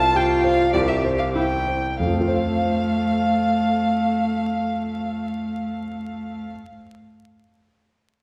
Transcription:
Already playing: grand piano C2 C5, cello F4, violin A5
0.15 grand piano G4, violin G5
0.44 grand piano C5, violin F5
0.73 grand piano C2, cello G4, violin D5
0.88 violin E5
1.05 grand piano C5
1.18 violin F5
1.35 cello E4, grand piano E4, violin G5
1.67 grand piano C5
1.99 grand piano F2, cello A3, violin F5
2.07 grand piano F3
2.13 grand piano A3
2.21 grand piano F4
2.28 grand piano C5
2.35 grand piano F5

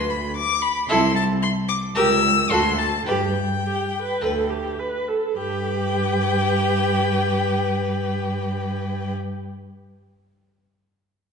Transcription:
Already playing: cello D2, violin C6
0.10 violin B5
0.36 violin D6
0.62 violin B5
0.88 cello C2, viola E4, violin A4 C6
1.16 violin A5
1.42 violin C6
1.68 violin D6
1.95 cello C#2, viola G4, violin A#4 E6
2.50 cello D2, viola F#4, violin A4 C6
2.78 violin A5
3.06 cello G2, viola G4, violin B4 G5
3.64 viola G4
4.03 viola B4
4.21 cello D2, viola A4, violin B4
4.50 viola G4
4.79 viola B4
5.08 viola A4
5.36 cello G2, viola G4, violin B4 G5

